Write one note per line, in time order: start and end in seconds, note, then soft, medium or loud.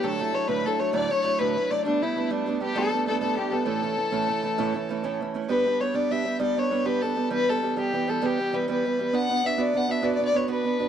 0.03 0.20 D2 medium
0.03 0.20 A2 medium
0.03 0.18 F#3 medium
0.03 0.19 A3 medium
0.03 0.19 D4 medium
0.03 0.20 E4 medium
0.03 0.36 A4 medium
0.03 0.48 A4 medium
0.19 0.31 F#3 medium
0.19 0.32 A3 medium
0.19 0.33 D4 medium
0.19 0.33 E4 medium
0.32 0.47 F#3 medium
0.32 0.47 A3 soft
0.32 0.48 D4 soft
0.32 0.48 E4 medium
0.32 0.49 C#5 medium
0.48 0.65 D2 medium
0.48 0.65 A2 medium
0.48 0.63 F#3 medium
0.48 0.64 A3 medium
0.48 0.65 D4 medium
0.48 0.65 E4 medium
0.48 0.67 B4 medium
0.48 0.69 B4 medium
0.64 0.77 F#3 medium
0.64 0.78 A3 medium
0.64 0.79 D4 medium
0.64 0.79 E4 medium
0.64 0.81 A4 medium
0.78 0.92 F#3 medium
0.78 0.92 A3 medium
0.78 0.93 D4 medium
0.78 0.93 E4 medium
0.78 0.97 C#5 medium
0.78 0.92 C#5 medium
0.93 1.11 D2 medium
0.93 1.11 A2 medium
0.93 1.09 F#3 medium
0.93 1.10 A3 medium
0.93 1.10 D4 medium
0.93 1.11 E4 medium
0.93 1.12 D5 medium
1.10 1.22 F#3 soft
1.10 1.23 A3 soft
1.10 1.23 D4 medium
1.10 1.24 E4 medium
1.10 1.40 C#5 loud
1.10 1.24 C#5 medium
1.22 1.39 F#3 medium
1.22 1.38 A3 medium
1.22 1.39 D4 medium
1.22 1.39 E4 medium
1.22 1.32 D5 medium
1.31 1.43 C#5 medium
1.38 1.56 D2 medium
1.38 1.57 A2 medium
1.38 1.56 F#3 medium
1.38 1.56 A3 medium
1.38 1.57 D4 medium
1.38 1.57 E4 medium
1.38 1.72 B4 medium
1.38 1.73 B4 medium
1.57 1.70 F#3 soft
1.57 1.70 A3 medium
1.57 1.71 D4 medium
1.57 1.71 E4 soft
1.71 1.85 F#3 soft
1.71 1.85 A3 soft
1.71 1.85 D4 medium
1.71 1.86 E4 medium
1.71 1.84 D5 medium
1.71 1.86 D5 medium
1.85 2.01 G3 medium
1.85 2.01 A3 medium
1.85 2.02 B3 medium
1.85 2.04 D4 medium
1.85 2.03 D4 medium
1.85 2.05 D4 medium
2.02 2.15 G3 soft
2.02 2.15 A3 medium
2.02 2.16 B3 medium
2.02 2.16 D4 medium
2.02 2.33 E4 medium
2.02 2.32 E4 medium
2.16 2.29 G3 soft
2.16 2.29 A3 medium
2.16 2.30 B3 medium
2.16 2.30 D4 medium
2.30 2.45 G3 medium
2.30 2.46 A3 medium
2.30 2.46 B3 medium
2.30 2.61 D4 medium
2.30 2.62 D4 medium
2.30 2.47 D4 medium
2.46 2.59 G3 medium
2.46 2.60 A3 medium
2.46 2.60 B3 medium
2.46 2.61 D4 medium
2.60 2.74 G3 medium
2.60 2.74 A3 medium
2.60 2.74 B3 medium
2.60 2.75 D4 medium
2.60 2.76 G4 medium
2.60 2.79 G4 medium
2.75 2.91 G3 medium
2.75 2.91 A3 medium
2.75 2.92 B3 medium
2.75 2.92 D4 medium
2.75 3.07 A4 medium
2.92 3.05 G3 soft
2.92 3.06 A3 medium
2.92 3.07 B3 medium
2.92 3.07 D4 medium
3.07 3.19 G3 medium
3.07 3.20 A3 medium
3.07 3.20 B3 medium
3.07 3.20 D4 medium
3.07 3.20 A4 medium
3.21 3.35 G3 medium
3.21 3.36 A3 medium
3.21 3.37 B3 medium
3.21 3.37 D4 medium
3.21 3.40 A4 medium
3.21 3.36 A4 medium
3.37 3.49 G3 soft
3.37 3.51 A3 soft
3.37 3.51 B3 medium
3.37 3.51 D4 medium
3.37 3.53 G4 medium
3.37 3.55 G4 medium
3.51 3.65 G3 soft
3.51 3.65 A3 soft
3.51 3.66 B3 medium
3.51 3.66 D4 soft
3.51 3.64 A4 medium
3.51 3.67 A4 medium
3.65 3.83 A2 medium
3.65 3.81 E3 medium
3.65 3.82 A3 medium
3.65 3.82 C#4 medium
3.65 3.83 E4 medium
3.65 5.15 A4 medium
3.65 5.17 A4 medium
3.82 3.96 E3 medium
3.82 3.97 A3 medium
3.82 3.97 C#4 medium
3.82 3.97 E4 medium
3.97 4.11 E3 medium
3.97 4.11 A3 soft
3.97 4.11 C#4 soft
3.97 4.12 E4 soft
4.12 4.29 A2 medium
4.12 4.27 E3 medium
4.12 4.28 A3 medium
4.12 4.28 C#4 medium
4.12 4.29 E4 medium
4.28 4.41 E3 medium
4.28 4.42 A3 medium
4.28 4.43 C#4 medium
4.28 4.44 E4 medium
4.43 4.57 E3 medium
4.43 4.57 A3 medium
4.43 4.58 C#4 medium
4.43 4.58 E4 medium
4.58 4.75 A2 medium
4.58 4.73 E3 medium
4.58 4.73 A3 medium
4.58 4.74 C#4 medium
4.58 4.75 E4 loud
4.74 4.88 E3 medium
4.74 4.89 A3 medium
4.74 4.89 C#4 medium
4.74 4.90 E4 medium
4.89 5.03 E3 medium
4.89 5.03 A3 medium
4.89 5.03 C#4 medium
4.89 5.04 E4 medium
5.03 5.21 A2 medium
5.03 5.19 E3 medium
5.03 5.20 A3 medium
5.03 5.21 C#4 medium
5.03 5.21 E4 medium
5.21 5.33 E3 soft
5.21 5.34 A3 medium
5.21 5.34 C#4 medium
5.21 5.35 E4 medium
5.34 5.48 E3 soft
5.34 5.49 A3 medium
5.34 5.50 C#4 medium
5.34 5.50 E4 medium
5.49 5.64 G3 medium
5.49 5.65 B3 medium
5.49 5.65 D4 medium
5.49 5.66 G4 medium
5.49 5.82 B4 medium
5.65 5.79 G3 medium
5.65 5.80 B3 medium
5.65 5.80 D4 medium
5.65 5.81 G4 medium
5.80 5.93 G3 soft
5.80 5.93 B3 medium
5.80 5.93 D4 medium
5.80 5.94 G4 soft
5.80 5.97 C#5 medium
5.94 6.09 G3 medium
5.94 6.10 B3 medium
5.94 6.10 D4 medium
5.94 6.11 G4 medium
5.94 6.13 D5 medium
6.10 6.23 G3 soft
6.10 6.24 B3 medium
6.10 6.24 D4 medium
6.10 6.25 G4 medium
6.10 6.40 E5 medium
6.24 6.38 G3 soft
6.24 6.38 B3 soft
6.24 6.39 D4 medium
6.24 6.39 G4 medium
6.39 6.55 G3 medium
6.39 6.56 B3 medium
6.39 6.56 D4 medium
6.39 6.57 G4 medium
6.39 6.60 D5 medium
6.56 6.70 G3 soft
6.56 6.70 B3 medium
6.56 6.71 D4 medium
6.56 6.71 G4 medium
6.56 6.87 C#5 medium
6.71 6.83 G3 medium
6.71 6.84 B3 medium
6.71 6.84 D4 medium
6.71 6.85 G4 medium
6.84 7.01 G3 medium
6.84 7.02 B3 medium
6.84 7.02 D4 medium
6.84 7.03 G4 medium
6.84 7.03 B4 medium
7.02 7.15 G3 soft
7.02 7.16 B3 medium
7.02 7.16 D4 medium
7.02 7.17 G4 medium
7.02 7.31 A4 medium
7.16 7.29 G3 soft
7.16 7.30 B3 medium
7.16 7.30 D4 soft
7.16 7.30 G4 medium
7.30 7.46 E3 medium
7.30 7.47 G3 medium
7.30 7.48 B3 medium
7.30 7.48 G4 medium
7.30 7.51 B4 loud
7.48 7.61 E3 medium
7.48 7.61 G3 medium
7.48 7.62 B3 medium
7.48 7.62 G4 medium
7.48 7.77 A4 medium
7.62 7.75 E3 soft
7.62 7.75 G3 medium
7.62 7.76 B3 medium
7.62 7.76 G4 medium
7.76 7.91 E3 medium
7.76 7.92 G3 medium
7.76 7.92 B3 medium
7.76 7.93 G4 medium
7.76 8.11 G4 medium
7.93 8.06 E3 medium
7.93 8.07 G3 medium
7.93 8.07 B3 medium
7.93 8.08 G4 medium
8.07 8.20 E3 medium
8.07 8.21 G3 medium
8.07 8.21 B3 medium
8.07 8.21 G4 medium
8.07 8.27 A4 medium
8.21 8.37 E3 medium
8.21 8.38 G3 medium
8.21 8.38 B3 medium
8.21 8.39 G4 medium
8.21 8.56 G4 medium
8.38 8.51 E3 medium
8.38 8.52 G3 medium
8.38 8.53 B3 medium
8.38 8.53 G4 medium
8.52 8.67 E3 medium
8.52 8.67 G3 medium
8.52 8.68 B3 medium
8.52 8.68 G4 medium
8.52 8.68 B4 medium
8.68 8.84 E3 medium
8.68 8.84 G3 medium
8.68 8.85 B3 medium
8.68 8.85 G4 medium
8.68 9.16 B4 medium
8.85 8.98 E3 soft
8.85 8.98 G3 medium
8.85 8.99 B3 medium
8.85 9.00 G4 medium
8.99 9.12 E3 medium
8.99 9.13 G3 medium
8.99 9.12 B3 medium
8.99 9.14 G4 medium
9.13 9.29 B3 medium
9.13 9.29 D4 medium
9.13 9.30 F#4 medium
9.13 9.30 B4 medium
9.13 9.47 F#5 loud
9.30 9.42 B3 medium
9.30 9.43 D4 medium
9.30 9.43 F#4 medium
9.30 9.44 B4 soft
9.43 9.56 B3 soft
9.43 9.56 D4 medium
9.43 9.57 F#4 medium
9.43 9.57 B4 medium
9.43 9.61 E5 medium
9.57 9.73 B3 medium
9.57 9.73 D4 medium
9.57 9.74 F#4 medium
9.57 9.75 B4 medium
9.57 9.78 D5 medium
9.74 9.87 B3 medium
9.74 9.88 D4 medium
9.74 9.88 F#4 medium
9.74 9.89 B4 medium
9.74 9.92 F#5 medium
9.88 10.01 B3 medium
9.88 10.01 D4 medium
9.88 10.02 F#4 medium
9.88 10.02 B4 medium
9.88 10.05 E5 medium
10.02 10.18 B3 medium
10.02 10.18 D4 medium
10.02 10.19 F#4 medium
10.02 10.20 B4 medium
10.02 10.15 D5 medium
10.15 10.32 B3 medium
10.15 10.24 D5 medium
10.20 10.33 D4 medium
10.20 10.33 F#4 medium
10.20 10.34 B4 medium
10.25 10.38 D5 loud
10.33 10.47 B3 medium
10.33 10.47 D4 medium
10.33 10.48 F#4 medium
10.33 10.48 B4 medium
10.33 10.50 C#5 medium
10.48 10.63 B3 medium
10.48 10.65 D4 medium
10.48 10.65 F#4 medium
10.48 10.66 B4 medium
10.48 10.89 B4 medium
10.64 10.78 B3 medium
10.64 10.78 D4 medium
10.64 10.79 F#4 medium
10.64 10.80 B4 soft
10.79 10.89 B3 soft
10.79 10.89 D4 medium
10.79 10.89 F#4 medium
10.79 10.89 B4 medium